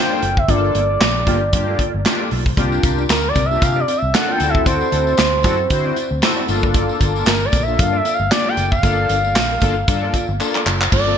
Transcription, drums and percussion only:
0.22 closed hi-hat medium
0.37 kick medium
0.48 kick loud
0.48 closed hi-hat medium
0.75 closed hi-hat medium
1.01 snare loud
1.01 clap medium
1.01 closed hi-hat medium
1.27 kick medium
1.27 closed hi-hat medium
1.53 kick loud
1.53 closed hi-hat loud
1.79 kick medium
1.79 closed hi-hat medium
2.05 snare loud
2.05 clap medium
2.05 closed hi-hat medium
2.31 open hi-hat medium
2.46 kick medium
2.57 kick loud
2.57 closed hi-hat medium
2.57 tambourine soft
2.72 tambourine soft
2.83 kick medium
2.83 closed hi-hat medium
2.83 tambourine medium
2.98 tambourine soft
3.09 snare loud
3.09 clap medium
3.09 closed hi-hat medium
3.09 tambourine loud
3.35 kick medium
3.35 closed hi-hat medium
3.35 tambourine medium
3.51 tambourine soft
3.62 kick loud
3.62 closed hi-hat medium
3.62 tambourine medium
3.88 closed hi-hat medium
3.88 tambourine medium
4.14 snare medium
4.14 clap medium
4.14 closed hi-hat medium
4.14 tambourine medium
4.40 closed hi-hat medium
4.40 tambourine soft
4.55 kick medium
4.66 kick loud
4.66 closed hi-hat medium
4.66 tambourine soft
4.81 tambourine soft
4.92 closed hi-hat medium
4.92 tambourine medium
5.07 tambourine soft
5.17 snare loud
5.17 clap medium
5.17 closed hi-hat medium
5.17 tambourine medium
5.43 kick medium
5.43 closed hi-hat medium
5.43 tambourine soft
5.70 kick loud
5.70 closed hi-hat loud
5.70 tambourine medium
5.96 closed hi-hat medium
5.96 tambourine medium
6.22 snare loud
6.22 clap medium
6.22 closed hi-hat medium
6.22 tambourine medium
6.48 closed hi-hat medium
6.48 tambourine medium
6.63 kick medium
6.74 kick loud
6.74 closed hi-hat medium
6.74 tambourine soft
6.89 tambourine soft
7.01 kick medium
7.01 closed hi-hat medium
7.01 tambourine soft
7.16 tambourine soft
7.26 snare loud
7.26 clap medium
7.26 closed hi-hat medium
7.26 tambourine loud
7.52 kick medium
7.52 closed hi-hat medium
7.52 tambourine medium
7.68 tambourine soft
7.79 kick loud
7.79 closed hi-hat loud
7.79 tambourine soft
8.05 closed hi-hat medium
8.05 tambourine medium
8.31 snare loud
8.31 clap medium
8.31 closed hi-hat medium
8.31 tambourine medium
8.57 closed hi-hat medium
8.57 tambourine medium
8.72 kick medium
8.72 tambourine soft
8.83 kick loud
8.83 closed hi-hat medium
8.83 tambourine soft
9.09 closed hi-hat medium
9.09 tambourine soft
9.24 tambourine soft
9.35 snare loud
9.35 clap medium
9.35 closed hi-hat medium
9.35 tambourine loud
9.61 kick medium
9.61 closed hi-hat medium
9.61 tambourine medium
9.88 kick loud
9.88 closed hi-hat loud
9.88 tambourine medium
10.14 kick medium
10.14 closed hi-hat medium
10.14 tambourine medium
10.40 clap medium
10.40 tambourine medium
10.55 clap medium
10.67 clap medium
10.67 tambourine soft
10.81 clap medium
10.81 tambourine soft
10.92 kick loud
10.92 crash loud
10.92 tambourine soft
11.07 tambourine soft

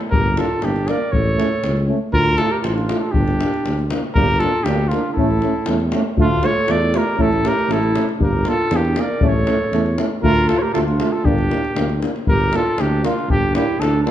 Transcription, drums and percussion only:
0.01 davul high soft
0.12 davul low loud
0.37 davul high medium
0.62 davul high medium
0.76 davul high soft
0.88 davul high medium
1.13 davul low medium
1.40 davul high medium
1.64 davul high medium
1.77 davul high soft
2.13 davul low medium
2.38 davul high medium
2.64 davul high medium
2.78 davul high soft
2.89 davul high medium
3.14 davul low medium
3.28 davul high soft
3.41 davul high medium
3.54 davul high soft
3.66 davul high medium
3.79 davul high soft
3.90 davul high medium
4.04 davul high soft
4.15 davul low loud
4.40 davul high medium
4.66 davul high medium
4.79 davul high soft
4.91 davul high medium
5.17 davul low medium
5.42 davul high soft
5.66 davul high medium
5.80 davul high soft
5.92 davul high medium
6.18 davul low loud
6.43 davul high medium
6.68 davul high medium
6.82 davul high soft
6.94 davul high medium
7.19 davul low medium
7.33 davul high soft
7.45 davul high medium
7.59 davul high soft
7.71 davul high medium
7.83 davul high soft
7.96 davul high medium
8.09 davul high soft
8.21 davul low medium
8.45 davul high medium
8.71 davul high medium
8.85 davul high soft
8.96 davul high medium
9.21 davul low loud
9.47 davul high medium
9.73 davul high medium
9.86 davul high soft
9.98 davul high medium
10.24 davul low medium
10.49 davul high medium
10.75 davul high medium
10.88 davul high soft
11.00 davul high medium
11.25 davul low medium
11.38 davul high soft
11.51 davul high medium
11.65 davul high soft
11.76 davul high medium
11.89 davul high soft
12.02 davul high medium
12.16 davul high soft
12.27 davul low medium
12.41 davul high soft
12.53 davul high medium
12.78 davul high medium
13.05 davul high medium
13.19 davul high soft
13.30 davul low medium
13.55 davul high medium
13.82 davul high medium
14.07 davul high medium

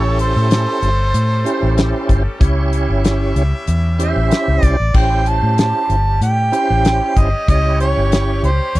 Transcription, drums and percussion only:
0.19 closed hi-hat medium
0.51 snare loud
0.51 closed hi-hat medium
0.82 closed hi-hat medium
1.14 closed hi-hat medium
1.46 closed hi-hat medium
1.78 snare loud
1.78 closed hi-hat medium
2.09 kick medium
2.09 closed hi-hat medium
2.41 kick loud
2.41 closed hi-hat medium
2.73 closed hi-hat medium
3.04 snare loud
3.04 closed hi-hat medium
3.36 closed hi-hat medium
3.67 closed hi-hat medium
4.00 closed hi-hat medium
4.31 snare medium
4.31 closed hi-hat medium
4.63 kick medium
4.63 closed hi-hat medium
4.94 kick loud
4.94 crash loud
5.26 closed hi-hat medium
5.58 snare loud
5.58 closed hi-hat medium
5.90 closed hi-hat medium
6.21 closed hi-hat medium
6.53 closed hi-hat medium
6.85 snare loud
6.85 closed hi-hat medium
7.17 kick medium
7.17 closed hi-hat medium
7.48 kick loud
7.48 closed hi-hat medium
7.80 closed hi-hat medium
8.12 snare loud
8.12 closed hi-hat medium
8.44 closed hi-hat medium
8.75 closed hi-hat medium

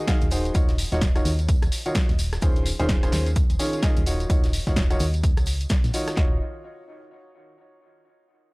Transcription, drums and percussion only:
0.07 kick loud
0.07 snare loud
0.07 closed hi-hat medium
0.07 tambourine medium
0.07 tambourine soft
0.07 shaker medium
0.21 closed hi-hat soft
0.21 tambourine soft
0.31 open hi-hat medium
0.31 tambourine loud
0.31 tambourine medium
0.31 shaker medium
0.45 closed hi-hat soft
0.45 tambourine soft
0.54 kick loud
0.54 closed hi-hat loud
0.54 tambourine soft
0.54 shaker medium
0.68 snare medium
0.68 closed hi-hat soft
0.68 tambourine soft
0.78 open hi-hat loud
0.78 tambourine medium
0.78 shaker medium
0.92 snare medium
0.92 closed hi-hat soft
0.92 tambourine soft
1.01 kick loud
1.01 snare loud
1.01 closed hi-hat medium
1.01 tambourine medium
1.01 tambourine soft
1.01 shaker medium
1.16 cross-stick medium
1.16 closed hi-hat soft
1.16 tambourine soft
1.25 open hi-hat medium
1.25 tambourine medium
1.25 shaker medium
1.39 closed hi-hat soft
1.39 tambourine soft
1.49 kick loud
1.49 closed hi-hat medium
1.49 tambourine medium
1.49 tambourine soft
1.49 shaker medium
1.62 cross-stick medium
1.62 closed hi-hat soft
1.62 tambourine soft
1.72 open hi-hat loud
1.72 tambourine medium
1.72 shaker medium
1.86 closed hi-hat soft
1.86 tambourine soft
1.95 kick loud
1.95 snare loud
1.95 closed hi-hat medium
1.95 tambourine medium
1.95 tambourine soft
1.95 shaker medium
1.96 snare loud
2.09 snare soft
2.09 closed hi-hat soft
2.09 tambourine soft
2.18 snare soft
2.18 open hi-hat medium
2.18 tambourine medium
2.18 shaker medium
2.33 cross-stick medium
2.33 snare medium
2.33 closed hi-hat soft
2.33 tambourine soft
2.42 kick loud
2.42 closed hi-hat loud
2.42 tambourine soft
2.42 tambourine medium
2.42 shaker medium
2.56 closed hi-hat soft
2.56 tambourine soft
2.65 open hi-hat loud
2.65 tambourine medium
2.65 shaker medium
2.80 closed hi-hat soft
2.80 tambourine soft
2.89 kick loud
2.89 snare loud
2.89 closed hi-hat medium
2.89 tambourine soft
2.89 shaker medium
3.03 cross-stick medium
3.03 closed hi-hat soft
3.03 tambourine soft
3.12 snare medium
3.12 open hi-hat medium
3.12 tambourine medium
3.12 shaker medium
3.26 closed hi-hat soft
3.26 tambourine soft
3.36 kick loud
3.36 closed hi-hat loud
3.36 tambourine soft
3.36 shaker medium
3.50 closed hi-hat soft
3.50 tambourine soft
3.59 open hi-hat loud
3.59 tambourine medium
3.59 shaker medium
3.73 closed hi-hat soft
3.73 tambourine soft
3.82 kick loud
3.82 snare loud
3.82 closed hi-hat medium
3.82 tambourine soft
3.82 shaker medium
3.96 closed hi-hat soft
3.96 tambourine soft
4.06 open hi-hat medium
4.06 tambourine medium
4.06 shaker medium
4.20 closed hi-hat soft
4.20 tambourine soft
4.30 kick loud
4.30 closed hi-hat loud
4.30 tambourine medium
4.30 tambourine soft
4.30 shaker medium
4.44 snare medium
4.44 closed hi-hat soft
4.44 tambourine soft
4.53 open hi-hat loud
4.53 tambourine medium
4.53 shaker medium
4.67 kick medium
4.67 snare medium
4.67 closed hi-hat soft
4.67 tambourine soft
4.76 kick loud
4.76 snare loud
4.76 closed hi-hat loud
4.76 tambourine soft
4.76 shaker medium
4.90 cross-stick medium
4.90 closed hi-hat soft
4.90 tambourine soft
4.99 open hi-hat medium
4.99 tambourine medium
4.99 shaker medium
5.13 closed hi-hat soft
5.13 tambourine soft
5.23 kick loud
5.23 closed hi-hat loud
5.23 tambourine soft
5.23 shaker medium
5.37 cross-stick medium
5.37 closed hi-hat soft
5.37 tambourine soft
5.46 open hi-hat loud
5.46 tambourine medium
5.46 shaker medium
5.47 tambourine medium
5.61 closed hi-hat soft
5.61 tambourine soft
5.69 kick loud
5.69 snare loud
5.69 closed hi-hat loud
5.69 tambourine medium
5.69 tambourine soft
5.69 shaker medium
5.84 snare soft
5.84 closed hi-hat soft
5.84 tambourine soft
5.93 snare soft
5.93 open hi-hat medium
5.93 tambourine medium
5.93 shaker medium
6.08 cross-stick medium
6.08 snare medium
6.08 closed hi-hat soft
6.08 tambourine soft
6.17 kick loud
6.17 snare loud
6.17 clap medium

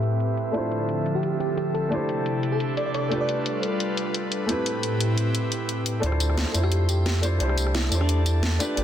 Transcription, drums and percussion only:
0.03 closed hi-hat medium
0.20 closed hi-hat medium
0.37 closed hi-hat medium
0.54 closed hi-hat medium
0.72 closed hi-hat medium
0.89 closed hi-hat medium
1.06 closed hi-hat medium
1.23 closed hi-hat medium
1.40 closed hi-hat medium
1.58 closed hi-hat medium
1.75 closed hi-hat medium
1.92 closed hi-hat medium
2.09 closed hi-hat medium
2.26 closed hi-hat medium
2.43 closed hi-hat medium
2.60 closed hi-hat medium
2.77 closed hi-hat medium
2.94 closed hi-hat medium
3.12 closed hi-hat medium
3.29 closed hi-hat medium
3.46 closed hi-hat medium
3.63 closed hi-hat medium
3.80 closed hi-hat medium
3.97 closed hi-hat medium
4.14 closed hi-hat medium
4.32 closed hi-hat medium
4.49 closed hi-hat medium
4.66 closed hi-hat medium
4.83 closed hi-hat medium
5.01 closed hi-hat medium
5.18 closed hi-hat medium
5.35 closed hi-hat medium
5.52 closed hi-hat medium
5.69 closed hi-hat medium
5.86 closed hi-hat medium
6.03 closed hi-hat medium
6.12 cross-stick soft
6.20 closed hi-hat medium
6.20 tambourine medium
6.29 cross-stick soft
6.38 snare loud
6.38 closed hi-hat medium
6.46 cross-stick soft
6.54 closed hi-hat loud
6.54 tambourine medium
6.63 cross-stick soft
6.72 closed hi-hat medium
6.89 closed hi-hat medium
6.89 tambourine medium
7.06 snare loud
7.06 closed hi-hat medium
7.23 closed hi-hat medium
7.23 tambourine medium
7.40 closed hi-hat medium
7.49 cross-stick soft
7.58 closed hi-hat medium
7.58 tambourine medium
7.67 cross-stick soft
7.75 snare loud
7.75 closed hi-hat medium
7.84 cross-stick soft
7.92 closed hi-hat medium
7.92 tambourine medium
8.01 cross-stick soft
8.09 closed hi-hat medium
8.26 closed hi-hat medium
8.26 tambourine medium
8.43 snare loud
8.43 closed hi-hat medium
8.60 closed hi-hat medium
8.60 tambourine medium
8.77 closed hi-hat medium

